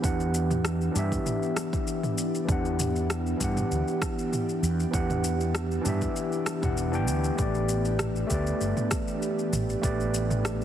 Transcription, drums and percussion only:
0.04 kick loud
0.04 shaker soft
0.20 shaker soft
0.34 shaker medium
0.51 mid tom medium
0.51 shaker soft
0.65 cross-stick medium
0.65 shaker soft
0.81 shaker soft
0.96 shaker medium
1.12 kick medium
1.12 shaker soft
1.26 mid tom medium
1.26 shaker soft
1.43 shaker soft
1.57 cross-stick medium
1.57 shaker medium
1.73 kick medium
1.73 shaker soft
1.87 shaker soft
2.03 mid tom medium
2.03 shaker soft
2.18 shaker medium
2.35 shaker soft
2.49 kick loud
2.49 shaker soft
2.65 shaker soft
2.79 mid tom medium
2.79 shaker medium
2.96 shaker soft
3.10 cross-stick medium
3.10 shaker soft
3.26 shaker soft
3.40 kick medium
3.40 shaker medium
3.57 mid tom medium
3.57 shaker soft
3.71 shaker soft
3.88 shaker soft
4.02 kick loud
4.02 cross-stick medium
4.02 shaker medium
4.19 shaker soft
4.33 mid tom medium
4.33 shaker soft
4.49 shaker soft
4.63 shaker medium
4.80 shaker soft
4.93 kick loud
4.93 shaker soft
5.10 mid tom medium
5.10 shaker soft
5.24 shaker medium
5.41 shaker soft
5.55 cross-stick medium
5.55 shaker soft
5.71 shaker soft
5.85 mid tom medium
5.85 shaker medium
6.01 kick medium
6.01 shaker soft
6.16 shaker soft
6.32 shaker soft
6.46 cross-stick medium
6.46 shaker medium
6.63 kick loud
6.63 mid tom medium
6.63 shaker soft
6.77 shaker soft
6.93 shaker soft
7.08 shaker medium
7.24 shaker soft
7.38 kick loud
7.38 shaker soft
7.55 shaker soft
7.69 shaker medium
7.85 shaker soft
7.99 cross-stick medium
7.99 mid tom medium
7.99 shaker soft
8.16 shaker soft
8.30 kick medium
8.30 shaker medium
8.47 shaker soft
8.61 shaker soft
8.77 mid tom medium
8.77 shaker soft
8.91 kick loud
8.91 cross-stick medium
8.91 shaker medium
9.08 shaker soft
9.22 shaker soft
9.39 shaker soft
9.53 mid tom medium
9.53 shaker medium
9.70 shaker soft
9.83 kick loud
9.83 shaker soft
10.00 shaker soft
10.14 shaker medium
10.31 mid tom medium
10.31 shaker soft
10.45 cross-stick medium
10.45 shaker soft
10.61 shaker soft

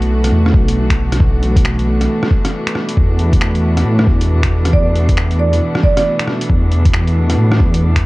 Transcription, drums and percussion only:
0.02 closed hi-hat soft
0.24 cross-stick soft
0.24 closed hi-hat medium
0.46 cross-stick medium
0.54 kick loud
0.68 closed hi-hat medium
0.90 finger snap loud
0.90 kick medium
0.90 closed hi-hat soft
1.12 cross-stick medium
1.12 closed hi-hat medium
1.20 kick loud
1.43 closed hi-hat soft
1.56 kick loud
1.56 closed hi-hat medium
1.65 finger snap loud
1.79 closed hi-hat soft
2.01 cross-stick soft
2.01 closed hi-hat medium
2.23 cross-stick medium
2.31 kick loud
2.45 cross-stick medium
2.45 closed hi-hat medium
2.67 finger snap loud
2.67 closed hi-hat soft
2.75 cross-stick medium
2.89 closed hi-hat medium
2.97 kick loud
3.19 closed hi-hat soft
3.33 kick loud
3.33 closed hi-hat medium
3.41 finger snap loud
3.55 closed hi-hat soft
3.77 cross-stick soft
3.77 closed hi-hat medium
3.99 cross-stick medium
4.07 kick loud
4.21 closed hi-hat medium
4.43 finger snap loud
4.43 kick medium
4.43 closed hi-hat soft
4.65 cross-stick medium
4.65 closed hi-hat medium
4.73 kick loud
4.95 closed hi-hat soft
5.09 kick loud
5.09 closed hi-hat medium
5.17 finger snap loud
5.31 closed hi-hat soft
5.53 closed hi-hat medium
5.75 cross-stick medium
5.83 kick loud
5.97 cross-stick medium
5.97 closed hi-hat medium
6.19 finger snap loud
6.19 closed hi-hat soft
6.27 cross-stick medium
6.41 closed hi-hat medium
6.50 kick loud
6.71 closed hi-hat soft
6.85 kick loud
6.85 closed hi-hat medium
6.93 finger snap loud
7.07 closed hi-hat soft
7.30 cross-stick soft
7.30 closed hi-hat medium
7.52 cross-stick medium
7.60 kick loud
7.74 closed hi-hat medium
7.96 finger snap loud
7.96 kick medium
7.96 closed hi-hat soft

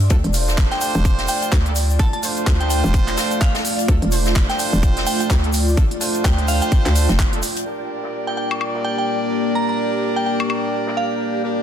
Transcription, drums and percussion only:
0.00 closed hi-hat soft
0.10 kick loud
0.10 closed hi-hat medium
0.10 shaker soft
0.24 closed hi-hat soft
0.34 closed hi-hat medium
0.34 open hi-hat loud
0.34 shaker medium
0.48 snare soft
0.48 closed hi-hat soft
0.48 shaker medium
0.57 kick loud
0.57 snare loud
0.57 clap loud
0.57 closed hi-hat medium
0.57 shaker soft
0.71 snare soft
0.71 closed hi-hat soft
0.81 closed hi-hat medium
0.81 open hi-hat loud
0.81 shaker medium
0.95 shaker medium
1.05 kick loud
1.05 closed hi-hat medium
1.05 shaker soft
1.18 snare soft
1.18 closed hi-hat medium
1.28 open hi-hat loud
1.28 open hi-hat medium
1.28 shaker medium
1.42 closed hi-hat soft
1.42 shaker medium
1.52 kick loud
1.52 snare loud
1.52 clap loud
1.52 closed hi-hat medium
1.52 shaker soft
1.66 closed hi-hat soft
1.76 closed hi-hat medium
1.76 open hi-hat loud
1.76 shaker medium
1.90 shaker soft
1.99 kick loud
1.99 closed hi-hat medium
1.99 shaker soft
2.13 closed hi-hat soft
2.23 closed hi-hat medium
2.23 open hi-hat loud
2.23 shaker medium
2.37 closed hi-hat soft
2.37 shaker medium
2.46 kick loud
2.46 snare loud
2.46 clap loud
2.46 closed hi-hat medium
2.46 shaker soft
2.60 closed hi-hat soft
2.70 closed hi-hat medium
2.70 open hi-hat loud
2.70 shaker medium
2.84 shaker medium
2.94 kick loud
2.94 closed hi-hat medium
2.94 shaker soft
3.08 clap soft
3.08 closed hi-hat medium
3.08 closed hi-hat soft
3.17 snare loud
3.17 closed hi-hat medium
3.17 open hi-hat loud
3.17 shaker medium
3.31 closed hi-hat soft
3.31 shaker medium
3.41 kick loud
3.41 clap loud
3.41 closed hi-hat medium
3.41 shaker soft
3.55 snare medium
3.55 closed hi-hat medium
3.65 open hi-hat loud
3.65 shaker medium
3.79 closed hi-hat medium
3.79 shaker medium
3.88 kick loud
3.88 closed hi-hat medium
3.88 shaker soft
4.02 closed hi-hat medium
4.12 closed hi-hat medium
4.12 open hi-hat loud
4.12 shaker medium
4.25 snare medium
4.25 closed hi-hat soft
4.25 shaker soft
4.35 kick loud
4.35 snare loud
4.35 clap loud
4.35 closed hi-hat medium
4.35 shaker soft
4.50 snare medium
4.50 closed hi-hat medium
4.59 closed hi-hat medium
4.59 open hi-hat loud
4.59 shaker medium
4.73 shaker medium
4.83 kick loud
4.83 closed hi-hat medium
4.83 shaker soft
4.97 snare medium
4.97 closed hi-hat medium
5.06 open hi-hat medium
5.06 open hi-hat loud
5.06 shaker medium
5.20 closed hi-hat soft
5.20 shaker soft
5.30 kick loud
5.30 snare loud
5.30 clap loud
5.30 closed hi-hat medium
5.30 shaker soft
5.44 closed hi-hat medium
5.53 closed hi-hat medium
5.53 open hi-hat loud
5.53 shaker medium
5.68 shaker soft
5.77 kick loud
5.77 closed hi-hat medium
5.77 shaker soft
5.91 closed hi-hat medium
6.01 closed hi-hat medium
6.01 open hi-hat loud
6.01 shaker medium
6.14 closed hi-hat soft
6.14 shaker soft
6.25 kick loud
6.25 snare loud
6.25 clap loud
6.25 closed hi-hat medium
6.25 shaker soft
6.38 closed hi-hat medium
6.48 closed hi-hat medium
6.48 open hi-hat loud
6.48 shaker medium
6.61 closed hi-hat soft
6.61 shaker medium
6.72 kick loud
6.72 closed hi-hat medium
6.72 shaker soft
6.86 clap soft
6.86 closed hi-hat medium
6.86 closed hi-hat soft
6.96 closed hi-hat medium
6.96 open hi-hat loud
6.96 shaker medium
7.09 snare medium
7.09 closed hi-hat soft
7.09 shaker medium
7.19 kick loud
7.19 clap loud
7.19 closed hi-hat medium
7.19 shaker soft
7.33 closed hi-hat medium
7.43 closed hi-hat medium
7.43 open hi-hat loud
7.43 shaker medium
7.56 closed hi-hat soft
7.56 closed hi-hat medium
7.56 shaker soft
7.66 closed hi-hat medium
7.90 closed hi-hat medium
8.03 snare soft
8.13 closed hi-hat medium
8.27 snare soft
8.37 closed hi-hat medium
8.51 high woodblock medium
8.61 high woodblock medium
8.75 snare soft
8.85 open hi-hat medium
9.08 closed hi-hat medium
9.55 closed hi-hat medium
9.80 closed hi-hat medium
10.02 closed hi-hat medium
10.27 closed hi-hat medium
10.40 high woodblock medium
10.50 high woodblock medium
10.63 closed hi-hat soft
10.74 closed hi-hat medium
10.87 snare medium
10.97 closed hi-hat medium
11.11 closed hi-hat soft
11.21 closed hi-hat medium
11.34 closed hi-hat soft
11.45 closed hi-hat medium

